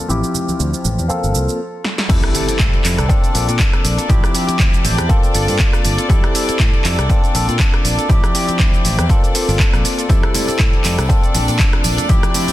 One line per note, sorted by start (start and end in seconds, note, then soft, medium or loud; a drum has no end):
0.00 1.60 F3 medium
0.00 1.60 F6 medium
0.08 0.21 A1 medium
0.08 1.08 F3 medium
0.08 1.05 F3 medium
0.08 1.05 C4 medium
0.08 1.09 C4 medium
0.08 1.05 E4 medium
0.08 1.10 E4 medium
0.08 1.05 G4 medium
0.08 1.10 G4 medium
0.08 shaker soft
0.24 shaker soft
0.34 tambourine medium
0.34 low conga medium
0.34 shaker medium
0.48 muted fingered electric bass stroke soft
0.48 tambourine soft
0.48 high conga medium
0.48 shaker soft
0.60 0.71 D2 medium
0.60 tambourine soft
0.60 shaker soft
0.74 shaker soft
0.84 0.96 A1 medium
0.84 tambourine medium
0.84 low conga medium
0.84 shaker medium
0.98 1.08 E2 medium
0.98 tambourine medium
0.98 shaker soft
1.08 1.59 A#3 medium
1.08 1.59 C4 medium
1.08 1.60 C4 medium
1.08 1.59 F4 medium
1.08 2.10 F4 medium
1.08 1.60 A4 medium
1.08 2.10 A4 medium
1.08 tambourine soft
1.08 high conga medium
1.08 shaker soft
1.24 1.33 G1 medium
1.24 shaker soft
1.35 1.46 C2 medium
1.35 tambourine medium
1.35 shaker medium
1.49 tambourine medium
1.49 shaker soft
1.85 snare medium
1.98 snare medium
2.09 2.21 F2 loud
2.09 2.33 G3 medium
2.09 3.05 C4 medium
2.09 2.34 C4 medium
2.09 10.08 D4 medium
2.09 3.05 E4 medium
2.09 2.34 E4 loud
2.09 3.05 G4 medium
2.09 3.05 A4 medium
2.09 2.35 A4 medium
2.09 10.09 D5 medium
2.09 kick loud
2.09 closed hi-hat medium
2.09 crash loud
2.09 impact medium
2.09 shaker soft
2.24 cross-stick medium
2.24 closed hi-hat soft
2.34 2.48 G3 medium
2.34 2.49 C4 medium
2.34 2.48 E4 medium
2.34 2.47 A4 medium
2.34 open hi-hat loud
2.34 shaker medium
2.48 2.59 C4 medium
2.48 2.59 E4 medium
2.48 2.59 A4 medium
2.48 muted fingered electric bass stroke soft
2.48 closed hi-hat medium
2.48 shaker soft
2.59 2.71 A2 medium
2.59 2.83 G3 medium
2.59 2.84 C4 loud
2.59 2.84 E4 medium
2.59 2.85 A4 loud
2.59 kick loud
2.59 clap loud
2.59 closed hi-hat medium
2.59 shaker soft
2.73 closed hi-hat soft
2.84 2.96 F2 medium
2.84 2.98 G3 medium
2.84 2.98 C4 medium
2.84 2.98 E4 medium
2.84 2.97 A4 medium
2.84 clap medium
2.84 open hi-hat loud
2.84 shaker medium
2.98 3.08 C2 medium
2.98 3.09 C4 soft
2.98 3.10 E4 medium
2.98 3.09 A4 medium
2.98 cross-stick medium
2.98 closed hi-hat medium
2.98 shaker soft
3.09 3.23 F3 medium
3.09 3.23 A#3 medium
3.09 4.05 C4 medium
3.09 4.05 D4 medium
3.09 3.23 D4 medium
3.09 4.05 F4 medium
3.09 4.05 A4 medium
3.09 3.22 A4 medium
3.09 kick loud
3.09 closed hi-hat medium
3.09 shaker soft
3.23 3.34 A#3 medium
3.23 3.34 D4 medium
3.23 3.34 A4 medium
3.23 closed hi-hat soft
3.23 shaker soft
3.34 3.46 A#1 loud
3.34 3.48 F3 medium
3.34 3.48 A#3 medium
3.34 3.48 D4 medium
3.34 3.47 A4 medium
3.34 open hi-hat loud
3.34 shaker medium
3.48 3.58 A#2 medium
3.48 3.58 A#3 medium
3.48 3.59 D4 medium
3.48 3.59 A4 medium
3.48 closed hi-hat medium
3.48 shaker soft
3.59 3.98 F3 medium
3.59 3.98 A#3 medium
3.59 kick loud
3.59 clap loud
3.59 closed hi-hat medium
3.59 shaker soft
3.73 cross-stick medium
3.73 closed hi-hat soft
3.85 3.96 A#1 medium
3.85 open hi-hat loud
3.85 shaker medium
3.98 4.09 A#3 soft
3.98 4.09 D4 medium
3.98 4.09 A4 medium
3.98 closed hi-hat medium
3.98 shaker soft
4.09 4.21 A1 loud
4.09 4.33 F3 medium
4.09 5.05 F3 medium
4.09 5.05 C4 medium
4.09 4.33 C4 loud
4.09 5.05 E4 medium
4.09 4.34 E4 loud
4.09 4.35 G4 loud
4.09 5.06 G4 medium
4.09 kick loud
4.09 closed hi-hat medium
4.09 shaker soft
4.24 cross-stick medium
4.24 closed hi-hat soft
4.24 shaker soft
4.34 4.48 F3 medium
4.34 4.48 C4 medium
4.34 4.47 E4 medium
4.34 4.46 G4 medium
4.34 open hi-hat loud
4.34 shaker medium
4.47 4.58 C4 medium
4.47 4.59 E4 medium
4.47 4.59 G4 medium
4.47 muted fingered electric bass stroke soft
4.47 closed hi-hat medium
4.47 shaker soft
4.59 4.71 D2 medium
4.59 4.83 F3 medium
4.59 4.83 C4 medium
4.59 4.84 E4 medium
4.59 4.84 G4 loud
4.59 kick loud
4.59 clap loud
4.59 closed hi-hat medium
4.59 shaker soft
4.74 closed hi-hat soft
4.74 shaker soft
4.84 4.96 A1 medium
4.84 4.98 F3 medium
4.84 4.98 C4 medium
4.84 4.98 E4 medium
4.84 4.97 G4 medium
4.84 open hi-hat loud
4.84 shaker medium
4.98 5.08 E2 medium
4.98 5.08 C4 soft
4.98 5.10 E4 medium
4.98 5.09 G4 medium
4.98 cross-stick medium
4.98 closed hi-hat medium
4.98 shaker soft
5.09 6.05 A#3 medium
5.09 5.23 A#3 medium
5.09 6.05 C4 medium
5.09 5.23 C4 medium
5.09 6.05 F4 medium
5.09 5.22 F4 medium
5.09 6.06 A4 medium
5.09 5.21 A4 medium
5.09 kick loud
5.09 closed hi-hat medium
5.09 shaker soft
5.23 5.33 C4 medium
5.23 5.34 F4 medium
5.23 5.34 A4 medium
5.23 closed hi-hat soft
5.23 shaker soft
5.34 5.46 G1 loud
5.34 5.48 A#3 medium
5.34 5.48 C4 medium
5.34 5.47 F4 medium
5.34 5.46 A4 medium
5.34 open hi-hat loud
5.34 shaker medium
5.47 5.58 G2 medium
5.47 5.58 C4 medium
5.47 5.59 F4 medium
5.47 5.59 A4 medium
5.47 open hi-hat medium
5.47 shaker soft
5.59 5.98 A#3 medium
5.59 5.98 C4 medium
5.59 5.98 F4 medium
5.59 kick loud
5.59 clap loud
5.59 closed hi-hat medium
5.59 shaker soft
5.73 cross-stick medium
5.73 closed hi-hat soft
5.73 shaker soft
5.85 5.96 G1 medium
5.85 open hi-hat loud
5.85 shaker medium
5.98 6.09 C4 soft
5.98 6.10 F4 medium
5.98 6.09 A4 medium
5.98 closed hi-hat medium
5.98 shaker soft
6.09 6.21 F2 loud
6.09 6.33 G3 medium
6.09 7.05 C4 medium
6.09 6.34 C4 loud
6.09 7.05 E4 medium
6.09 6.34 E4 loud
6.09 7.05 G4 medium
6.09 7.05 A4 medium
6.09 6.35 A4 loud
6.09 kick loud
6.09 closed hi-hat medium
6.09 shaker soft
6.24 cross-stick medium
6.24 closed hi-hat soft
6.34 6.48 G3 medium
6.34 6.48 C4 medium
6.34 6.48 E4 medium
6.34 6.47 A4 medium
6.34 open hi-hat loud
6.34 shaker medium
6.48 6.59 C4 medium
6.48 6.59 E4 medium
6.48 6.59 A4 medium
6.48 muted fingered electric bass stroke soft
6.48 closed hi-hat medium
6.48 shaker soft
6.59 6.71 A2 medium
6.59 6.83 G3 medium
6.59 6.83 C4 medium
6.59 6.84 E4 medium
6.59 kick loud
6.59 clap loud
6.59 closed hi-hat medium
6.59 shaker soft
6.74 closed hi-hat soft
6.84 6.96 F2 medium
6.84 6.98 G3 medium
6.84 6.98 C4 medium
6.84 6.98 E4 medium
6.84 6.97 A4 medium
6.84 clap medium
6.84 open hi-hat loud
6.84 shaker medium
6.98 7.08 C2 medium
6.98 7.09 C4 soft
6.98 7.10 E4 medium
6.98 7.09 A4 medium
6.98 cross-stick medium
6.98 closed hi-hat medium
6.98 shaker soft
7.09 7.23 F3 medium
7.09 7.23 A#3 medium
7.09 8.05 C4 medium
7.09 8.05 D4 medium
7.09 7.23 D4 medium
7.09 8.05 F4 medium
7.09 7.22 A4 medium
7.09 8.06 A4 medium
7.09 kick loud
7.09 closed hi-hat medium
7.09 shaker soft
7.23 7.34 A#3 medium
7.23 7.34 D4 medium
7.23 7.34 A4 medium
7.23 closed hi-hat soft
7.23 shaker soft
7.34 7.46 A#1 medium
7.34 7.48 F3 medium
7.34 7.48 A#3 medium
7.34 7.48 D4 medium
7.34 7.47 A4 medium
7.34 open hi-hat loud
7.34 shaker medium
7.48 7.58 A#2 medium
7.48 7.58 A#3 medium
7.48 7.59 D4 medium
7.48 7.59 A4 medium
7.48 closed hi-hat medium
7.48 shaker soft
7.59 7.98 F3 medium
7.59 7.98 A#3 medium
7.59 7.98 D4 medium
7.59 7.97 A4 medium
7.59 kick loud
7.59 clap loud
7.59 closed hi-hat medium
7.59 shaker soft
7.74 cross-stick medium
7.74 closed hi-hat soft
7.85 7.96 A#1 medium
7.85 open hi-hat loud
7.85 shaker medium
7.98 8.09 A#3 medium
7.98 8.10 D4 medium
7.98 8.09 A4 medium
7.98 closed hi-hat medium
7.98 shaker soft
8.09 8.21 A1 loud
8.09 8.33 F3 loud
8.09 9.05 F3 medium
8.09 9.05 C4 medium
8.09 8.33 C4 loud
8.09 9.05 E4 medium
8.09 8.34 E4 loud
8.09 8.35 G4 loud
8.09 9.06 G4 medium
8.09 kick loud
8.09 closed hi-hat medium
8.09 shaker soft
8.24 cross-stick medium
8.24 closed hi-hat soft
8.24 shaker soft
8.34 8.48 F3 medium
8.34 8.48 C4 medium
8.34 8.48 E4 medium
8.34 8.46 G4 medium
8.34 open hi-hat loud
8.34 shaker medium
8.48 8.58 C4 medium
8.48 8.59 E4 medium
8.48 8.59 G4 medium
8.48 muted fingered electric bass stroke soft
8.48 closed hi-hat soft
8.48 shaker soft
8.59 8.71 D2 medium
8.59 8.83 F3 medium
8.59 8.83 C4 medium
8.59 8.84 E4 loud
8.59 kick loud
8.59 clap loud
8.59 closed hi-hat medium
8.59 shaker soft
8.74 closed hi-hat soft
8.74 shaker soft
8.84 8.96 A1 medium
8.84 8.98 F3 medium
8.84 8.98 C4 medium
8.84 8.98 E4 medium
8.84 8.97 G4 medium
8.84 open hi-hat loud
8.84 shaker medium
8.98 9.08 E2 medium
8.98 9.09 C4 medium
8.98 9.10 E4 medium
8.98 9.09 G4 medium
8.98 cross-stick medium
8.98 closed hi-hat medium
8.98 shaker soft
9.09 10.05 A#3 medium
9.09 9.23 A#3 medium
9.09 10.05 C4 medium
9.09 9.24 C4 medium
9.09 10.05 F4 medium
9.09 9.23 F4 medium
9.09 10.06 A4 medium
9.09 9.22 A4 loud
9.09 kick loud
9.09 closed hi-hat medium
9.09 shaker soft
9.23 9.34 C4 medium
9.23 9.34 F4 medium
9.23 9.34 A4 medium
9.23 closed hi-hat soft
9.23 shaker soft
9.34 9.48 A#3 medium
9.34 9.49 C4 medium
9.34 9.48 F4 medium
9.34 9.47 A4 medium
9.34 open hi-hat loud
9.34 shaker medium
9.48 9.58 G1 medium
9.48 9.58 C4 soft
9.48 9.59 F4 medium
9.48 9.59 A4 medium
9.48 open hi-hat medium
9.48 shaker soft
9.59 9.98 A#3 medium
9.59 9.98 C4 loud
9.59 9.97 A4 medium
9.59 kick loud
9.59 clap loud
9.59 closed hi-hat medium
9.59 shaker soft
9.73 9.83 A#1 loud
9.73 cross-stick medium
9.73 closed hi-hat soft
9.73 shaker soft
9.85 open hi-hat loud
9.85 shaker medium
9.98 10.09 C4 soft
9.98 10.10 F4 medium
9.98 10.09 A4 medium
9.98 closed hi-hat medium
9.98 shaker soft
10.09 10.21 F2 loud
10.09 10.33 G3 medium
10.09 11.05 C4 medium
10.09 10.34 C4 loud
10.09 12.53 D4 medium
10.09 11.05 E4 medium
10.09 10.34 E4 medium
10.09 11.05 G4 medium
10.09 11.05 A4 medium
10.09 10.35 A4 loud
10.09 12.53 D5 medium
10.09 kick loud
10.09 closed hi-hat soft
10.09 tambourine soft
10.09 shaker soft
10.23 cross-stick medium
10.23 closed hi-hat soft
10.34 10.48 G3 medium
10.34 10.48 C4 medium
10.34 10.48 E4 medium
10.34 10.47 A4 medium
10.34 open hi-hat loud
10.34 tambourine loud
10.34 low conga medium
10.34 shaker medium
10.48 10.58 C4 soft
10.48 10.59 E4 medium
10.48 10.59 A4 medium
10.48 muted fingered electric bass stroke soft
10.48 closed hi-hat soft
10.48 tambourine medium
10.48 shaker soft
10.59 10.71 A2 medium
10.59 10.83 G3 medium
10.59 10.84 C4 medium
10.59 10.84 E4 loud
10.59 10.85 A4 medium
10.59 kick loud
10.59 clap loud
10.59 closed hi-hat medium
10.59 shaker soft
10.73 closed hi-hat soft
10.84 10.96 F2 medium
10.84 10.98 G3 medium
10.84 10.99 C4 medium
10.84 10.98 E4 medium
10.84 10.97 A4 medium
10.84 clap medium
10.84 open hi-hat loud
10.84 tambourine medium
10.84 low conga medium
10.84 shaker medium
10.98 11.08 C2 medium
10.98 11.10 C4 medium
10.98 11.10 E4 medium
10.98 11.09 A4 medium
10.98 cross-stick medium
10.98 closed hi-hat soft
10.98 tambourine soft
10.98 shaker soft
11.08 11.23 F3 medium
11.08 11.24 A#3 medium
11.08 12.05 C4 medium
11.08 12.05 D4 medium
11.08 11.23 D4 medium
11.08 12.05 F4 medium
11.08 12.05 A4 medium
11.08 11.22 A4 medium
11.08 kick loud
11.08 closed hi-hat medium
11.08 tambourine soft
11.08 shaker soft
11.23 11.34 A#3 medium
11.23 11.35 D4 medium
11.23 11.35 A4 medium
11.23 closed hi-hat soft
11.23 shaker soft
11.34 11.46 A#1 medium
11.34 11.48 F3 medium
11.34 11.49 A#3 medium
11.34 11.48 D4 medium
11.34 11.47 A4 medium
11.34 open hi-hat loud
11.34 tambourine medium
11.34 high conga medium
11.34 shaker medium
11.48 11.58 A#2 medium
11.48 11.58 A#3 medium
11.48 11.59 D4 medium
11.48 11.59 A4 medium
11.48 closed hi-hat soft
11.48 tambourine medium
11.48 shaker soft
11.59 11.98 F3 medium
11.59 11.98 A#3 medium
11.59 11.97 D4 medium
11.59 11.96 A4 loud
11.59 kick loud
11.59 clap loud
11.59 closed hi-hat medium
11.59 shaker soft
11.73 cross-stick medium
11.73 closed hi-hat soft
11.84 11.96 A#1 medium
11.84 open hi-hat loud
11.84 tambourine medium
11.84 high conga medium
11.84 shaker medium
11.97 12.09 A#3 medium
11.97 12.10 D4 medium
11.97 12.09 A4 medium
11.97 closed hi-hat medium
11.97 tambourine soft
11.97 low conga medium
11.97 shaker soft
12.09 12.21 A1 loud
12.09 12.33 F3 loud
12.09 12.53 F3 medium
12.09 12.53 C4 medium
12.09 12.34 C4 medium
12.09 12.53 E4 medium
12.09 12.34 E4 loud
12.09 12.53 G4 medium
12.09 12.35 G4 loud
12.09 kick loud
12.09 closed hi-hat medium
12.09 tambourine soft
12.09 high conga medium
12.09 shaker soft
12.23 cross-stick medium
12.23 closed hi-hat soft
12.23 shaker soft
12.34 12.48 F3 medium
12.34 12.48 C4 medium
12.34 12.47 E4 medium
12.34 12.46 G4 medium
12.34 open hi-hat loud
12.34 tambourine loud
12.34 low conga medium
12.34 shaker medium
12.48 12.53 E4 medium
12.48 12.53 G4 medium
12.48 muted fingered electric bass stroke soft
12.48 closed hi-hat medium
12.48 tambourine soft
12.48 high conga medium
12.48 shaker soft